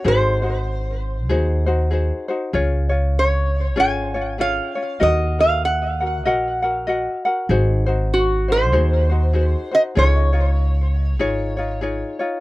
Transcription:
X:1
M:4/4
L:1/8
Q:"Swing" 1/4=97
K:Db
V:1 name="Resonator guitar played with a steel bar"
c3 z4 z | z2 d2 a2 f2 | e f g2 z4 | z2 G c4 e |
d6 z2 |]
V:2 name="Ukulele"
[EGAc] [EGc]3 [EGAc] [EGc] [EGAc] [EGc] | [DFAd] [DFd]3 [DFAd] [DFd] [DFAd] [DFd] | [GBeg] [GB]2 [GBg] [GBeg] [GBg] [GBeg] [GBg] | [EGAc] [EGc]2 [EGc] [EGAc] [EGc] [EGAc] [EGc] |
[EFAd] [EFd]3 [EFAd] [EFd] [EFAd] [EFd] |]
V:3 name="Upright bass" clef=bass
A,,,4 E,,4 | D,,4 A,,,4 | E,,4 B,,,4 | A,,,4 E,,4 |
D,,4 A,,,4 |]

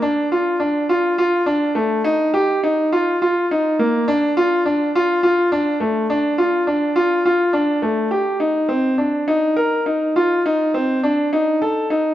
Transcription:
X:1
M:7/8
L:1/8
Q:1/4=104
K:Dphr
V:1 name="Grand piano"
D F D F F D A, | E G E F F E B, | D F D F F D A, | D F D F F D A, |
G E C D E B E | F E C D E A E |]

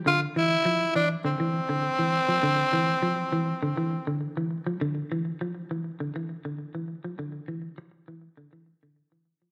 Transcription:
X:1
M:4/4
L:1/16
Q:1/4=101
K:Ddor
V:1 name="Tenor saxophone"
F2 E4 D2 C8- | C12 z4 | z16 | z16 |]
V:2 name="Clean electric guitar" clef=bass
D,2 E,2 F,2 E,2 D, E,2 D,2 E,2 F, | D,2 E,2 F,2 E,2 D, E,2 D,2 E,2 F, | D,2 E,2 F,2 E,2 D, E,2 D,2 E,2 F, | D,2 E,2 z2 E,2 D, E,2 D,2 E,2 F, |]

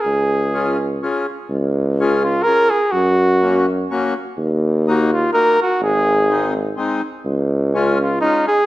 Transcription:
X:1
M:3/4
L:1/8
Q:"Swing" 1/4=125
K:Db
V:1 name="Flugelhorn"
A4 z2 | z3 F B A | G3 z3 | z3 F B G |
A3 z3 | z3 F E A |]
V:2 name="Accordion"
z2 [DFA] z [DFA] z | z2 [DFA] z [DFA] z | z2 [B,DG] z [B,DG] z | z2 [B,EG] z [B,EG] z |
z2 [A,CE] z [A,CE] z | z2 [A,DF] z [A,DF] z |]
V:3 name="Tuba" clef=bass
D,,6 | D,,6 | G,,6 | E,,6 |
A,,,6 | D,,6 |]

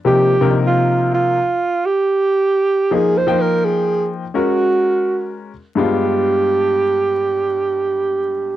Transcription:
X:1
M:4/4
L:1/16
Q:"Swing 16ths" 1/4=84
K:Cdor
V:1 name="Alto saxophone"
G3 F3 F4 G6 | (3_A2 c2 B2 A2 z2 _G6 z2 | G16 |]
V:2 name="Upright piano"
[C,F,B,EG]2 [C,F,B,DEB]4- [C,F,B,DEB] z8 z | [F,B,E_A]2 [F,B,Eg]4- [F,B,Eg] z [_A,_D_GB]6 z2 | [G,,_A,=B,DF]16 |]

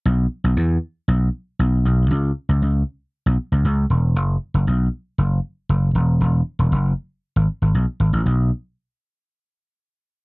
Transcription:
X:1
M:4/4
L:1/16
Q:1/4=117
K:Emix
V:1 name="Slap bass" clef=bass
B,,,2 z B,,, E,,2 z2 B,,,2 z2 B,,,2 B,,,2 | C,,2 z C,, C,,2 z3 B,,, z C,, C,,2 E,,,2 | F,,,2 z F,,, B,,,2 z2 F,,,2 z2 F,,,2 E,,,2 | E,,,2 z E,,, F,,,2 z3 G,,, z G,,, B,,, z G,,, A,,, |
B,,,2 z12 z2 |]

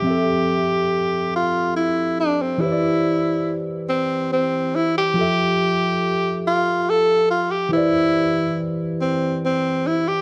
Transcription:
X:1
M:6/8
L:1/16
Q:3/8=47
K:Flyd
V:1 name="Tine electric piano"
[F,CGAe]12 | [E,EGBc^cd]12 | [F,FGAe]12 | [E,EGBcd]12 |]
V:2 name="Tenor saxophone"
G6 F2 E2 D C | E4- E z C2 C2 E G- | G6 F2 A2 F G | E4- E z C2 C2 E G |]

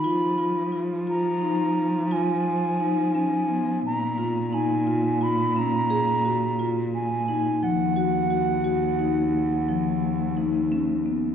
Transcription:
X:1
M:11/8
L:1/8
Q:1/4=87
K:Ebm
V:1 name="Flute"
c'2 z b3 a3 a2 | b2 a2 c' b3 z a2 | g8 z3 |]
V:2 name="Marimba"
F F F F E2 F2 E D C | z F E F F D A G F2 E | F, G G G E2 F,2 E D C |]
V:3 name="Cello" clef=bass
F,8- F,3 | B,,8- B,,3 | E,,8- E,,3 |]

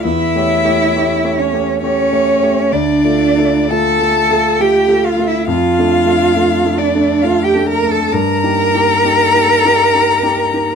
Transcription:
X:1
M:3/4
L:1/16
Q:1/4=67
K:Aphr
V:1 name="Violin"
e6 ^c2 c4 | d4 a4 g2 f e | f6 d2 f g b a | b12 |]
V:2 name="Cello"
E6 ^C2 C4 | D4 A4 G2 F E | F6 D2 F G B A | B12 |]
V:3 name="Grand piano"
(3E,,2 [A,G^c]2 [A,Gc]2 (3[A,Gc]2 [A,Gc]2 [A,Gc]2 (3[A,Gc]2 [A,Gc]2 [A,Gc]2 | (3D,,2 [A,FA]2 [A,FA]2 (3[A,FA]2 [A,FA]2 [A,FA]2 (3[A,FA]2 [A,FA]2 [A,FA]2 | (3F,,2 [A,DA]2 [A,DA]2 (3[A,DA]2 [A,DA]2 [A,DA]2 (3[A,DA]2 [A,DA]2 [A,DA]2 | (3G,,2 [B,_EG]2 [B,EG]2 (3[B,EG]2 [B,EG]2 [B,EG]2 (3[B,EG]2 [B,EG]2 [B,EG]2 |]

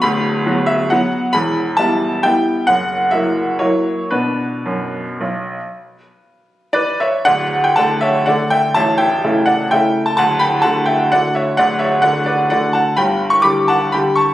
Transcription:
X:1
M:3/4
L:1/16
Q:1/4=126
K:Bm
V:1 name="Grand piano"
b6 e2 f4 | b4 a4 g4 | f4 e4 c4 | B12- |
B8 [Bd]2 [ce]2 | [K:D] [df]3 g [fa]2 [ce]2 [df]2 [eg]2 | [ea]2 [eg]4 [df]2 [eg]3 a | [fa]2 [gb]2 [fa]2 [eg]2 [df]2 [ce]2 |
[df]2 [ce]2 [df]2 [Bd]2 [df]2 [fa]2 | [gb]3 c' [bd']2 [fa]2 [gb]2 [ac']2 |]
V:2 name="Grand piano" clef=bass
[D,,,D,,]4 [F,B,F]4 [F,B,F]4 | [E,,,E,,]4 [G,B,E]4 [G,B,E]4 | [F,,,F,,]4 [F,^A,E]4 [F,A,E]4 | [B,,B,D]4 F,,4 B,,,4 |
z12 | [K:D] [D,,,D,,]4 [D,A,D]4 [D,A,D]4 | [A,,,,A,,,]4 [C,A,E]4 [C,A,E]4 | [D,,,D,,]4 [D,A,F]4 [D,A,F]4 |
[D,,,D,,]4 [D,A,F]4 [D,A,F]4 | [G,,,G,,]4 [D,G,G]4 [D,G,G]4 |]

